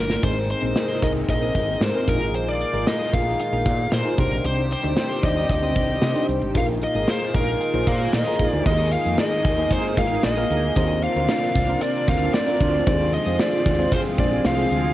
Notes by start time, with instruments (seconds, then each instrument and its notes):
Already playing: fretless electric bass G1, synth keys A#2 A#3 D4 F4 A#4
0.00 lead electric guitar A#4
0.10 snare
0.22 fretless electric bass G#1, synth keys G#2 C4 D#4 G#4 A#4, analog synth pad C3 G#3 A#3 D#4, lead electric guitar C5, kick, crash, shaker
0.36 shaker
0.50 lead electric guitar C5, closed hi-hat, shaker
0.61 fretless electric bass A#1, synth keys C4 D#4 G#4 C5, shaker
0.75 snare, closed hi-hat, shaker
0.89 shaker
1.02 fretless electric bass C2, synth keys C4 D#4 G#4 A#4, lead electric guitar D#5, kick, closed hi-hat, shaker
1.16 shaker
1.29 fretless electric bass A#1, lead electric guitar D#5, kick, closed hi-hat, shaker
1.41 synth keys C4 D#4 G#4 A#4, shaker
1.55 fretless electric bass G#1, kick, closed hi-hat
1.68 shaker
1.81 fretless electric bass G#2, lead electric guitar C5, snare, closed hi-hat, shaker
1.94 synth keys C4 D#4 G#4 A#4, shaker
2.07 fretless electric bass A#1, synth keys A#2 D#4 F4 G#4 A#4, analog synth pad D#3 G#3 F4, lead electric guitar A#4, kick, closed hi-hat, shaker
2.20 fretless electric bass G#1, shaker
2.33 fretless electric bass A#1, lead electric guitar C5, closed hi-hat, shaker
2.47 lead electric guitar D5, shaker
2.61 closed hi-hat, shaker
2.73 fretless electric bass G#1, synth keys D#4 F4 G#4 A#4, shaker
2.86 lead electric guitar D#5, snare, closed hi-hat, shaker
3.00 shaker
3.12 fretless electric bass A#1, synth keys D#4 F4 G#4 A#4, lead electric guitar F5, kick, closed hi-hat, shaker
3.26 shaker
3.39 lead electric guitar F5, closed hi-hat, shaker
3.51 fretless electric bass A#1, synth keys D#4 F4 G#4 A#4, shaker
3.65 fretless electric bass A#2, kick, closed hi-hat
3.79 shaker
3.92 fretless electric bass A#2, lead electric guitar C5, snare, closed hi-hat, shaker
4.04 synth keys D#4 F4 G#4 A#4, shaker
4.18 fretless electric bass C2, synth keys C3 D4 D#4 G4 C5, analog synth pad D#3 G3 C4 G4, lead electric guitar A#4, kick, closed hi-hat, shaker
4.31 fretless electric bass A#1, shaker
4.44 fretless electric bass C2, lead electric guitar C5, closed hi-hat, shaker
4.58 shaker
4.71 lead electric guitar C5, closed hi-hat, shaker
4.83 fretless electric bass D2, synth keys D4 D#4 G4 C5, closed hi-hat, shaker
4.97 snare, closed hi-hat, shaker
5.11 shaker
5.22 fretless electric bass D#2, synth keys D4 D#4 G4 D5, lead electric guitar D#5, kick, closed hi-hat, shaker
5.37 shaker
5.49 fretless electric bass D2, lead electric guitar D#5, kick, closed hi-hat, shaker
5.62 synth keys C4 D#4 G4 C5, shaker
5.75 fretless electric bass C2, kick, closed hi-hat
5.90 shaker
6.02 fretless electric bass C3, snare, closed hi-hat, shaker
6.15 synth keys D4 D#4 G4 C5, closed hi-hat, shaker
6.29 fretless electric bass C2, closed hi-hat, shaker
6.41 fretless electric bass G#1, shaker
6.54 fretless electric bass A#1, synth keys A#2 D#4 F4 G#4 A#4, analog synth pad D#3 G#3 A#3 F4, lead electric guitar F5, kick, closed hi-hat, shaker
6.69 shaker
6.81 lead electric guitar D#5, closed hi-hat, shaker
6.94 fretless electric bass G#1, synth keys D#4 F4 G#4 A#4, shaker
7.07 lead electric guitar C5, snare, closed hi-hat, shaker
7.21 shaker
7.34 fretless electric bass A#1, synth keys D#4 F4 G#4 A#4, lead electric guitar A#4, kick, closed hi-hat, shaker
7.47 shaker
7.61 closed hi-hat, shaker
7.74 fretless electric bass A#1, synth keys D#4 F4 G#4 C5, shaker
7.87 fretless electric bass A#2, marimba F4, lead electric guitar F5, kick, closed hi-hat
8.00 analog polysynth D#4 F4 G#4, shaker
8.13 fretless electric bass A#2, marimba D#4, lead electric guitar D#5, snare, closed hi-hat, shaker
8.26 synth keys D#4 F4 G#4 A#4, shaker
8.39 fretless electric bass A#1, analog polysynth A#3 D#4 G#4, kick, closed hi-hat, shaker
8.50 fretless electric bass D2, lead electric guitar D5, shaker
8.64 fretless electric bass D#2, overdriven electric guitar G#2 D#3, analog synth pad D#3 G#3 A#3 G#4, synth keys D#3 A#3 D#4 G#4 A#4 D#5, marimba D#4, lead electric guitar D#5, kick, crash, shaker
8.69 overdriven electric guitar G#3
8.78 shaker
8.92 marimba F4, lead electric guitar F5, closed hi-hat, shaker
9.05 fretless electric bass F2, synth keys A#3 D#4 G#4 A#4 D#5, shaker
9.17 marimba D#4, lead electric guitar D#5, snare, closed hi-hat, tambourine, shaker
9.32 shaker
9.44 fretless electric bass D#2, kick, closed hi-hat, shaker
9.57 synth keys A#3 D#4 G#4 A#4 D#5, shaker
9.70 overdriven electric guitar G#2 D#3 G#3, analog polysynth A#3 D#4 G#4, marimba C4, lead electric guitar C5, kick, closed hi-hat, shaker
9.84 shaker
9.97 fretless electric bass G#1, synth keys A#3 D#4 G#4 A#4 D#5, marimba F4, lead electric guitar F5, kick, closed hi-hat, shaker
10.11 analog polysynth A#3 D#4 G#4, shaker
10.23 fretless electric bass A#1, overdriven electric guitar G#2 D#3 G#3, marimba D#4, lead electric guitar D#5, snare, closed hi-hat, tambourine, shaker
10.37 synth keys A#3 D#4 G#4 A#4 F5, shaker
10.50 fretless electric bass D2, analog polysynth A#3 D#4 G#4, closed hi-hat
10.63 shaker
10.75 fretless electric bass D#2, overdriven electric guitar A#2 F3, analog synth pad C3 F3 A#3 D4, synth keys D#3 C4 D4 F4 A#4 C5, marimba D#4, lead electric guitar D#5, kick, closed hi-hat, shaker
10.80 overdriven electric guitar A#3
10.90 shaker
11.03 marimba F4, lead electric guitar F5, closed hi-hat, shaker
11.16 fretless electric bass D2, synth keys C4 D4 F4 A#4 C5, shaker
11.28 marimba F4, lead electric guitar F5, snare, closed hi-hat, tambourine, shaker
11.43 shaker
11.55 fretless electric bass C2, kick, closed hi-hat, shaker
11.68 synth keys C4 D4 F4 A#4 C5, shaker
11.81 overdriven electric guitar A#2 F3 A#3, analog polysynth C4 D4 F4, marimba D4, lead electric guitar D5, closed hi-hat, shaker
11.94 shaker
12.07 fretless electric bass D2, synth keys C4 D4 F4 A#4 C5, marimba F4, lead electric guitar F5, kick, closed hi-hat, shaker
12.21 analog polysynth C4 D4 F4, shaker
12.33 overdriven electric guitar A#2 F3 A#3, marimba D4, lead electric guitar D5, snare, closed hi-hat, tambourine, shaker
12.46 synth keys C4 D4 F4 A#4 D5, closed hi-hat, shaker
12.60 fretless electric bass D2, analog polysynth C4 D4 F4, kick, closed hi-hat
12.73 shaker
12.85 fretless electric bass D#2, overdriven electric guitar F2 C3 F3, analog synth pad C3 G#3 F4, synth keys D#3 G#3 C4 F4 G#4 C5, marimba D4, lead electric guitar D5, kick, closed hi-hat, shaker
12.99 shaker
13.12 marimba D#4, lead electric guitar D#5, closed hi-hat, shaker
13.26 fretless electric bass F2, synth keys G#3 C4 F4 G#4 C5, closed hi-hat, shaker
13.38 marimba D4, lead electric guitar D5, snare, closed hi-hat, tambourine, shaker
13.52 shaker
13.65 fretless electric bass D#2, overdriven electric guitar C3 F3, kick, closed hi-hat, shaker
13.78 synth keys G#3 C4 F4 G#4 C5, shaker
13.92 overdriven electric guitar F2 C3 F3, analog polysynth G#3 C4 F4, marimba C4, lead electric guitar C5, kick, closed hi-hat, shaker
14.05 shaker
14.18 fretless electric bass A#1, synth keys G#3 C4 F4 G#4 C5, marimba D4, lead electric guitar D5, kick, closed hi-hat, shaker
14.31 analog polysynth C4 F4 G#4, shaker
14.44 fretless electric bass C2, overdriven electric guitar F2 C3 F3, marimba F4, lead electric guitar F5, snare, closed hi-hat, tambourine, shaker
14.57 synth keys G#3 C4 F4 G#4 C5, shaker
14.71 fretless electric bass D2, analog polysynth C4 F4 G#4, closed hi-hat
14.84 shaker